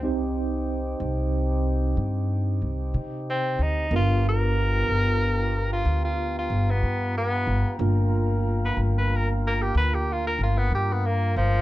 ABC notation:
X:1
M:12/8
L:1/16
Q:3/8=62
K:Gphr
V:1 name="Horn section"
z24 | [fg^a]24- | [fg^a]24 |]
V:2 name="Tenor saxophone"
z16 z4 C2 E2 | F2 ^A8- A F2 F2 F2 =B,3 B,4 | z4 z =B z B ^A z A G B G F A F =B, G B, ^A,2 F,2 |]
V:3 name="Tonewheel organ"
[CEG]24 | [=B,FG]24 | [^A,F^A]24 |]
V:4 name="Tine electric piano"
[CEGc]24 | [=B,DF^A]24 | [^A,DF^A]24 |]
V:5 name="Upright bass" clef=bass
C,,6 C,,6 G,,4 C,,2 C,4 D,,2 | G,,,6 G,,,6 D,,4 G,,,2 G,,4 G,,, z | G,,,6 G,,,6 D,,4 G,,,2 G,,4 G,,,2 |]